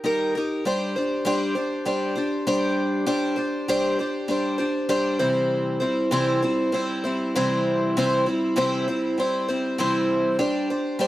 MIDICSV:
0, 0, Header, 1, 2, 480
1, 0, Start_track
1, 0, Tempo, 609137
1, 506, Time_signature, 4, 2, 24, 8
1, 8726, End_track
2, 0, Start_track
2, 0, Title_t, "Twelve-string acoustic guitar"
2, 0, Program_c, 0, 25
2, 29, Note_on_c, 0, 55, 65
2, 33, Note_on_c, 0, 63, 69
2, 42, Note_on_c, 0, 67, 78
2, 45, Note_on_c, 0, 70, 82
2, 267, Note_off_c, 0, 70, 0
2, 268, Note_off_c, 0, 55, 0
2, 270, Note_off_c, 0, 63, 0
2, 274, Note_off_c, 0, 67, 0
2, 277, Note_on_c, 0, 70, 63
2, 295, Note_on_c, 0, 67, 58
2, 299, Note_on_c, 0, 63, 53
2, 511, Note_off_c, 0, 70, 0
2, 514, Note_off_c, 0, 63, 0
2, 514, Note_on_c, 0, 55, 76
2, 515, Note_off_c, 0, 67, 0
2, 517, Note_on_c, 0, 62, 80
2, 524, Note_on_c, 0, 67, 86
2, 527, Note_on_c, 0, 72, 94
2, 746, Note_off_c, 0, 72, 0
2, 750, Note_off_c, 0, 55, 0
2, 751, Note_off_c, 0, 62, 0
2, 755, Note_off_c, 0, 67, 0
2, 755, Note_on_c, 0, 72, 54
2, 766, Note_on_c, 0, 67, 49
2, 772, Note_on_c, 0, 62, 50
2, 983, Note_off_c, 0, 62, 0
2, 983, Note_on_c, 0, 55, 93
2, 988, Note_off_c, 0, 67, 0
2, 988, Note_off_c, 0, 72, 0
2, 993, Note_on_c, 0, 62, 99
2, 997, Note_on_c, 0, 72, 103
2, 998, Note_on_c, 0, 67, 100
2, 1212, Note_off_c, 0, 72, 0
2, 1219, Note_off_c, 0, 67, 0
2, 1222, Note_on_c, 0, 72, 55
2, 1224, Note_off_c, 0, 55, 0
2, 1229, Note_off_c, 0, 62, 0
2, 1229, Note_on_c, 0, 67, 55
2, 1237, Note_on_c, 0, 62, 52
2, 1457, Note_off_c, 0, 62, 0
2, 1458, Note_off_c, 0, 67, 0
2, 1461, Note_on_c, 0, 55, 73
2, 1463, Note_off_c, 0, 72, 0
2, 1466, Note_on_c, 0, 62, 83
2, 1468, Note_on_c, 0, 67, 71
2, 1477, Note_on_c, 0, 72, 80
2, 1689, Note_off_c, 0, 72, 0
2, 1699, Note_on_c, 0, 72, 62
2, 1701, Note_off_c, 0, 67, 0
2, 1703, Note_off_c, 0, 55, 0
2, 1706, Note_off_c, 0, 62, 0
2, 1711, Note_on_c, 0, 67, 54
2, 1716, Note_on_c, 0, 62, 49
2, 1936, Note_off_c, 0, 62, 0
2, 1942, Note_off_c, 0, 67, 0
2, 1942, Note_off_c, 0, 72, 0
2, 1944, Note_on_c, 0, 55, 86
2, 1945, Note_on_c, 0, 62, 97
2, 1952, Note_on_c, 0, 67, 103
2, 1953, Note_on_c, 0, 72, 101
2, 2406, Note_off_c, 0, 62, 0
2, 2411, Note_off_c, 0, 55, 0
2, 2414, Note_off_c, 0, 67, 0
2, 2414, Note_on_c, 0, 55, 90
2, 2415, Note_on_c, 0, 62, 85
2, 2417, Note_on_c, 0, 67, 79
2, 2419, Note_off_c, 0, 72, 0
2, 2422, Note_on_c, 0, 72, 104
2, 2638, Note_off_c, 0, 72, 0
2, 2648, Note_on_c, 0, 72, 53
2, 2650, Note_off_c, 0, 67, 0
2, 2658, Note_off_c, 0, 62, 0
2, 2659, Note_on_c, 0, 67, 54
2, 2660, Note_off_c, 0, 55, 0
2, 2667, Note_on_c, 0, 62, 44
2, 2896, Note_off_c, 0, 72, 0
2, 2898, Note_off_c, 0, 67, 0
2, 2901, Note_off_c, 0, 62, 0
2, 2902, Note_on_c, 0, 55, 85
2, 2907, Note_on_c, 0, 67, 101
2, 2910, Note_on_c, 0, 62, 95
2, 2910, Note_on_c, 0, 72, 112
2, 3135, Note_off_c, 0, 72, 0
2, 3143, Note_off_c, 0, 55, 0
2, 3144, Note_off_c, 0, 67, 0
2, 3144, Note_on_c, 0, 72, 56
2, 3147, Note_off_c, 0, 62, 0
2, 3153, Note_on_c, 0, 67, 57
2, 3162, Note_on_c, 0, 62, 51
2, 3365, Note_off_c, 0, 62, 0
2, 3373, Note_on_c, 0, 55, 76
2, 3375, Note_off_c, 0, 67, 0
2, 3375, Note_on_c, 0, 62, 76
2, 3384, Note_off_c, 0, 72, 0
2, 3384, Note_on_c, 0, 67, 74
2, 3393, Note_on_c, 0, 72, 74
2, 3600, Note_off_c, 0, 72, 0
2, 3609, Note_off_c, 0, 67, 0
2, 3609, Note_on_c, 0, 72, 59
2, 3617, Note_off_c, 0, 62, 0
2, 3618, Note_off_c, 0, 55, 0
2, 3618, Note_on_c, 0, 67, 53
2, 3627, Note_on_c, 0, 62, 48
2, 3843, Note_off_c, 0, 62, 0
2, 3847, Note_off_c, 0, 67, 0
2, 3852, Note_off_c, 0, 72, 0
2, 3852, Note_on_c, 0, 55, 97
2, 3852, Note_on_c, 0, 62, 96
2, 3857, Note_on_c, 0, 67, 101
2, 3861, Note_on_c, 0, 72, 99
2, 4083, Note_off_c, 0, 72, 0
2, 4086, Note_off_c, 0, 55, 0
2, 4092, Note_off_c, 0, 67, 0
2, 4092, Note_on_c, 0, 72, 87
2, 4095, Note_off_c, 0, 62, 0
2, 4095, Note_on_c, 0, 55, 72
2, 4095, Note_on_c, 0, 64, 74
2, 4096, Note_on_c, 0, 52, 67
2, 4098, Note_on_c, 0, 60, 70
2, 4105, Note_on_c, 0, 48, 59
2, 4567, Note_off_c, 0, 72, 0
2, 4570, Note_on_c, 0, 72, 55
2, 4573, Note_off_c, 0, 64, 0
2, 4580, Note_off_c, 0, 52, 0
2, 4581, Note_off_c, 0, 60, 0
2, 4582, Note_on_c, 0, 64, 55
2, 4584, Note_on_c, 0, 60, 55
2, 4585, Note_off_c, 0, 48, 0
2, 4591, Note_off_c, 0, 55, 0
2, 4594, Note_on_c, 0, 55, 43
2, 4813, Note_off_c, 0, 55, 0
2, 4814, Note_off_c, 0, 60, 0
2, 4815, Note_on_c, 0, 48, 94
2, 4817, Note_off_c, 0, 64, 0
2, 4817, Note_off_c, 0, 72, 0
2, 4822, Note_on_c, 0, 55, 96
2, 4823, Note_on_c, 0, 60, 99
2, 4824, Note_on_c, 0, 52, 97
2, 4825, Note_on_c, 0, 72, 95
2, 4826, Note_on_c, 0, 64, 105
2, 5053, Note_off_c, 0, 72, 0
2, 5058, Note_off_c, 0, 64, 0
2, 5060, Note_off_c, 0, 48, 0
2, 5062, Note_on_c, 0, 72, 64
2, 5064, Note_off_c, 0, 55, 0
2, 5064, Note_off_c, 0, 60, 0
2, 5065, Note_off_c, 0, 52, 0
2, 5068, Note_on_c, 0, 64, 60
2, 5076, Note_on_c, 0, 55, 46
2, 5076, Note_on_c, 0, 60, 58
2, 5287, Note_off_c, 0, 55, 0
2, 5290, Note_off_c, 0, 60, 0
2, 5297, Note_on_c, 0, 55, 70
2, 5300, Note_on_c, 0, 60, 74
2, 5302, Note_off_c, 0, 72, 0
2, 5304, Note_off_c, 0, 64, 0
2, 5311, Note_on_c, 0, 72, 81
2, 5313, Note_on_c, 0, 64, 71
2, 5536, Note_off_c, 0, 72, 0
2, 5541, Note_off_c, 0, 55, 0
2, 5542, Note_off_c, 0, 60, 0
2, 5544, Note_off_c, 0, 64, 0
2, 5546, Note_on_c, 0, 72, 53
2, 5554, Note_on_c, 0, 64, 59
2, 5557, Note_on_c, 0, 60, 52
2, 5567, Note_on_c, 0, 55, 51
2, 5786, Note_off_c, 0, 72, 0
2, 5790, Note_off_c, 0, 64, 0
2, 5791, Note_off_c, 0, 60, 0
2, 5792, Note_off_c, 0, 55, 0
2, 5795, Note_on_c, 0, 48, 90
2, 5796, Note_on_c, 0, 52, 91
2, 5800, Note_on_c, 0, 64, 102
2, 5801, Note_on_c, 0, 55, 98
2, 5801, Note_on_c, 0, 60, 85
2, 5807, Note_on_c, 0, 72, 90
2, 6269, Note_off_c, 0, 48, 0
2, 6269, Note_off_c, 0, 52, 0
2, 6273, Note_off_c, 0, 64, 0
2, 6278, Note_off_c, 0, 55, 0
2, 6278, Note_on_c, 0, 48, 84
2, 6279, Note_on_c, 0, 52, 84
2, 6281, Note_on_c, 0, 55, 88
2, 6282, Note_off_c, 0, 60, 0
2, 6285, Note_on_c, 0, 60, 87
2, 6290, Note_off_c, 0, 72, 0
2, 6290, Note_on_c, 0, 64, 96
2, 6293, Note_on_c, 0, 72, 106
2, 6501, Note_off_c, 0, 72, 0
2, 6503, Note_off_c, 0, 64, 0
2, 6510, Note_on_c, 0, 72, 55
2, 6512, Note_off_c, 0, 48, 0
2, 6513, Note_off_c, 0, 52, 0
2, 6513, Note_on_c, 0, 64, 57
2, 6514, Note_off_c, 0, 55, 0
2, 6516, Note_off_c, 0, 60, 0
2, 6525, Note_on_c, 0, 60, 51
2, 6532, Note_on_c, 0, 55, 48
2, 6743, Note_off_c, 0, 55, 0
2, 6744, Note_on_c, 0, 52, 97
2, 6746, Note_off_c, 0, 60, 0
2, 6747, Note_off_c, 0, 64, 0
2, 6747, Note_on_c, 0, 48, 98
2, 6748, Note_off_c, 0, 72, 0
2, 6753, Note_on_c, 0, 55, 91
2, 6756, Note_on_c, 0, 60, 102
2, 6756, Note_on_c, 0, 64, 100
2, 6760, Note_on_c, 0, 72, 100
2, 6986, Note_off_c, 0, 52, 0
2, 6986, Note_off_c, 0, 72, 0
2, 6987, Note_off_c, 0, 48, 0
2, 6990, Note_off_c, 0, 55, 0
2, 6991, Note_off_c, 0, 60, 0
2, 6992, Note_off_c, 0, 64, 0
2, 6995, Note_on_c, 0, 72, 61
2, 7003, Note_on_c, 0, 64, 54
2, 7006, Note_on_c, 0, 60, 49
2, 7012, Note_on_c, 0, 55, 46
2, 7222, Note_off_c, 0, 55, 0
2, 7231, Note_off_c, 0, 72, 0
2, 7231, Note_on_c, 0, 55, 65
2, 7235, Note_off_c, 0, 60, 0
2, 7235, Note_off_c, 0, 64, 0
2, 7244, Note_on_c, 0, 60, 75
2, 7246, Note_on_c, 0, 64, 72
2, 7248, Note_on_c, 0, 72, 75
2, 7464, Note_off_c, 0, 72, 0
2, 7469, Note_off_c, 0, 55, 0
2, 7473, Note_off_c, 0, 64, 0
2, 7474, Note_on_c, 0, 72, 65
2, 7476, Note_off_c, 0, 60, 0
2, 7482, Note_on_c, 0, 64, 53
2, 7485, Note_on_c, 0, 60, 48
2, 7492, Note_on_c, 0, 55, 50
2, 7709, Note_on_c, 0, 48, 97
2, 7711, Note_off_c, 0, 72, 0
2, 7712, Note_off_c, 0, 55, 0
2, 7712, Note_off_c, 0, 60, 0
2, 7715, Note_off_c, 0, 64, 0
2, 7715, Note_on_c, 0, 52, 92
2, 7721, Note_on_c, 0, 55, 91
2, 7721, Note_on_c, 0, 60, 89
2, 7725, Note_on_c, 0, 64, 89
2, 7726, Note_on_c, 0, 72, 92
2, 8182, Note_off_c, 0, 55, 0
2, 8183, Note_off_c, 0, 60, 0
2, 8183, Note_off_c, 0, 64, 0
2, 8186, Note_on_c, 0, 55, 78
2, 8186, Note_on_c, 0, 62, 86
2, 8187, Note_on_c, 0, 67, 86
2, 8189, Note_off_c, 0, 48, 0
2, 8192, Note_off_c, 0, 52, 0
2, 8198, Note_off_c, 0, 72, 0
2, 8201, Note_on_c, 0, 72, 82
2, 8423, Note_off_c, 0, 72, 0
2, 8426, Note_off_c, 0, 67, 0
2, 8427, Note_off_c, 0, 55, 0
2, 8427, Note_off_c, 0, 62, 0
2, 8433, Note_on_c, 0, 72, 57
2, 8435, Note_on_c, 0, 67, 50
2, 8442, Note_on_c, 0, 62, 43
2, 8659, Note_off_c, 0, 62, 0
2, 8659, Note_on_c, 0, 55, 96
2, 8663, Note_off_c, 0, 67, 0
2, 8666, Note_off_c, 0, 72, 0
2, 8669, Note_on_c, 0, 62, 86
2, 8672, Note_on_c, 0, 67, 97
2, 8675, Note_on_c, 0, 72, 90
2, 8726, Note_off_c, 0, 55, 0
2, 8726, Note_off_c, 0, 62, 0
2, 8726, Note_off_c, 0, 67, 0
2, 8726, Note_off_c, 0, 72, 0
2, 8726, End_track
0, 0, End_of_file